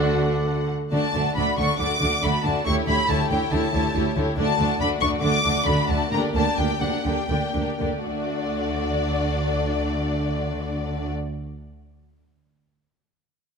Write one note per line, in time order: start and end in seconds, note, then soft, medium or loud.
0.00 0.71 D2 soft
0.00 0.71 D3 soft
0.00 0.71 A3 medium
0.00 0.66 D4 soft
0.00 0.66 D4 medium
0.00 0.68 D4 medium
0.00 0.69 F#4 medium
0.00 0.69 F#4 soft
0.00 0.68 F#5 soft
0.92 1.00 D2 soft
0.92 1.00 D3 soft
0.92 1.12 A3 soft
0.92 1.12 D4 soft
0.92 1.12 F#4 soft
0.92 1.12 D5 soft
0.92 1.33 A5 medium
1.13 1.23 D2 soft
1.13 1.22 D3 soft
1.13 1.35 A3 soft
1.13 1.35 D4 soft
1.13 1.35 F#4 soft
1.13 1.34 D5 soft
1.35 1.44 D2 medium
1.35 1.44 D3 soft
1.35 1.56 A3 soft
1.35 1.56 D4 soft
1.35 1.56 F#4 soft
1.35 1.56 D5 soft
1.35 1.58 B5 medium
1.57 1.66 D2 soft
1.57 1.66 D3 soft
1.57 1.78 A3 soft
1.57 1.77 D4 soft
1.57 1.79 F#4 soft
1.57 1.79 D5 soft
1.57 1.80 C#6 medium
1.79 1.88 D2 soft
1.79 1.88 D3 medium
1.79 1.99 A3 soft
1.79 1.99 D4 soft
1.79 2.01 F#4 soft
1.79 2.01 D5 soft
1.79 2.22 D6 medium
2.01 2.10 D2 soft
2.01 2.09 D3 soft
2.01 2.21 A3 soft
2.01 2.21 D4 soft
2.01 2.22 F#4 soft
2.01 2.22 D5 soft
2.22 2.31 D2 soft
2.22 2.30 D3 soft
2.22 2.43 A3 soft
2.22 2.43 D4 soft
2.22 2.44 F#4 soft
2.22 2.44 D5 soft
2.22 2.45 B5 medium
2.44 2.53 D2 soft
2.44 2.52 D3 soft
2.44 2.65 A3 soft
2.44 2.65 D4 soft
2.44 2.66 F#4 soft
2.44 2.66 D5 soft
2.44 2.66 A5 soft
2.66 2.74 D2 soft
2.66 2.74 D3 soft
2.66 2.86 A3 soft
2.66 2.86 E4 medium
2.66 2.87 G4 soft
2.66 2.87 C#5 soft
2.66 2.74 C#6 medium
2.87 2.96 D2 soft
2.87 2.96 D3 soft
2.87 3.07 A3 soft
2.87 3.07 E4 soft
2.87 3.09 G4 soft
2.87 3.09 C#5 soft
2.87 3.09 B5 medium
3.08 3.18 D2 soft
3.08 3.17 D3 soft
3.08 3.29 A3 soft
3.08 3.29 E4 soft
3.08 3.30 G4 soft
3.08 3.30 C#5 soft
3.08 3.30 A5 medium
3.30 3.39 D2 soft
3.30 3.39 D3 soft
3.30 3.50 A3 soft
3.30 3.50 E4 soft
3.30 3.51 G4 soft
3.30 3.51 C#5 soft
3.30 3.51 G5 medium
3.51 3.60 D2 soft
3.51 3.60 D3 medium
3.51 3.72 A3 soft
3.51 3.72 E4 soft
3.51 3.73 G4 soft
3.51 3.73 C#5 soft
3.51 4.16 A5 medium
3.73 3.82 D2 soft
3.73 3.82 D3 soft
3.73 3.93 A3 soft
3.73 3.93 E4 soft
3.73 3.95 G4 soft
3.73 3.95 C#5 soft
3.94 4.03 D2 soft
3.94 4.03 D3 soft
3.94 4.15 A3 soft
3.94 4.15 E4 soft
3.94 4.16 G4 soft
3.94 4.16 C#5 soft
4.16 4.24 D2 soft
4.16 4.25 D3 soft
4.16 4.36 A3 soft
4.16 4.37 E4 soft
4.16 4.38 G4 soft
4.16 4.38 C#5 soft
4.37 4.46 D2 soft
4.37 4.46 D3 medium
4.37 4.57 A3 medium
4.37 4.57 D4 medium
4.37 4.59 F#4 soft
4.37 4.59 D5 medium
4.37 4.77 A5 medium
4.58 4.67 D2 soft
4.58 4.67 D3 soft
4.58 4.78 A3 soft
4.58 4.78 D4 soft
4.58 4.80 F#4 soft
4.58 4.80 D5 soft
4.79 4.88 D2 soft
4.79 4.88 D3 soft
4.79 4.99 A3 soft
4.79 4.99 D4 soft
4.79 5.01 F#4 soft
4.79 5.01 D5 soft
4.79 4.88 B5 medium
5.01 5.09 D2 medium
5.01 5.10 D3 soft
5.01 5.21 A3 soft
5.01 5.21 D4 soft
5.01 5.23 F#4 soft
5.01 5.23 D5 soft
5.01 5.10 C#6 medium
5.22 5.30 D2 soft
5.22 5.30 D3 medium
5.22 5.43 A3 soft
5.22 5.43 D4 medium
5.22 5.44 F#4 soft
5.22 5.45 D5 soft
5.22 5.65 D6 medium
5.44 5.53 D2 soft
5.44 5.53 D3 soft
5.44 5.65 A3 soft
5.44 5.65 D4 soft
5.44 5.67 F#4 soft
5.44 5.67 D5 soft
5.66 5.75 D2 medium
5.66 5.75 D3 soft
5.66 5.87 A3 soft
5.66 5.87 D4 soft
5.66 5.89 F#4 soft
5.66 5.89 D5 soft
5.66 5.88 B5 medium
5.88 5.97 D2 soft
5.88 5.97 D3 soft
5.88 6.11 A3 soft
5.88 6.10 D4 soft
5.88 6.12 F#4 soft
5.88 6.11 D5 soft
5.88 6.11 A5 medium
6.11 6.20 D2 soft
6.11 6.20 D3 medium
6.11 6.33 A#3 soft
6.11 6.33 D4 soft
6.11 6.34 G4 soft
6.11 6.34 D5 soft
6.11 6.20 A#5 medium
6.34 6.42 D2 soft
6.34 6.43 D3 soft
6.34 6.56 A#3 soft
6.34 6.56 D4 soft
6.34 6.57 G4 soft
6.34 6.58 D5 soft
6.34 6.58 A5 medium
6.57 6.66 D2 soft
6.57 6.66 D3 soft
6.57 6.80 A#3 soft
6.57 6.80 D4 soft
6.57 6.80 G4 soft
6.57 6.80 D5 soft
6.57 6.81 G5 medium
6.81 6.89 D2 soft
6.81 6.89 D3 soft
6.81 7.03 A#3 soft
6.81 7.03 D4 soft
6.81 7.05 G4 soft
6.81 7.04 D5 soft
6.81 7.05 F#5 medium
7.04 7.13 D2 soft
7.04 7.13 D3 soft
7.04 7.28 A#3 soft
7.04 7.27 D4 soft
7.04 7.28 G4 soft
7.04 7.28 D5 soft
7.04 7.80 G5 medium
7.29 7.37 D2 soft
7.29 7.37 D3 soft
7.29 7.53 A#3 soft
7.29 7.53 D4 soft
7.29 7.54 G4 soft
7.29 7.54 D5 soft
7.54 7.62 D2 soft
7.54 7.62 D3 soft
7.54 7.78 A#3 soft
7.54 7.78 D4 soft
7.54 7.79 G4 soft
7.54 7.80 D5 soft
7.79 7.88 D2 soft
7.79 7.88 D3 soft
7.79 8.04 A#3 soft
7.79 8.04 D4 soft
7.79 8.05 G4 soft
7.79 8.05 D5 soft
8.05 11.10 D2 soft
8.05 11.09 D3 soft
8.05 11.09 A3 soft
8.05 11.09 D4 soft
8.05 11.10 F#4 soft
8.05 11.10 D5 soft